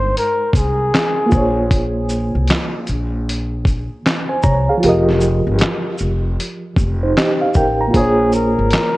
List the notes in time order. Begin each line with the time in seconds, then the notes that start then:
Already playing: G1 G#3 D#4 A#4 C5 G5
0.17 A#4, closed hi-hat
0.53 C2 G#4, kick, closed hi-hat, shaker
0.94 snare, clap, closed hi-hat
1.26 A#3 F4
1.31 A#1 G#4 C5, kick, shaker
1.37 C#5
1.71 kick, closed hi-hat
2.09 shaker
2.35 C2
2.47 snare, clap, closed hi-hat
2.87 A#1, closed hi-hat, shaker
3.29 closed hi-hat
3.65 kick, closed hi-hat, shaker
4.06 snare, clap, closed hi-hat
4.29 C5 G#5
4.43 C2 C#5 A#5, kick, shaker
4.69 G#4 F5
4.77 F3 F4
4.83 F1 G4 A#4, closed hi-hat
4.89 D#5
5.09 snare
5.21 shaker
5.47 G1
5.59 snare, clap, closed hi-hat
5.98 F1, shaker
6.40 closed hi-hat
6.77 F1, kick, shaker
7.03 D#4 C5
7.18 G4 D#5, snare, clap, closed hi-hat
7.41 F5
7.54 A1 A#4 G5, kick, shaker
7.81 A#5
7.88 A#3 F4
7.94 A#1 G#4 C5, kick, closed hi-hat
7.99 C#5
8.33 A#4, shaker
8.59 G#1
8.70 snare, clap, closed hi-hat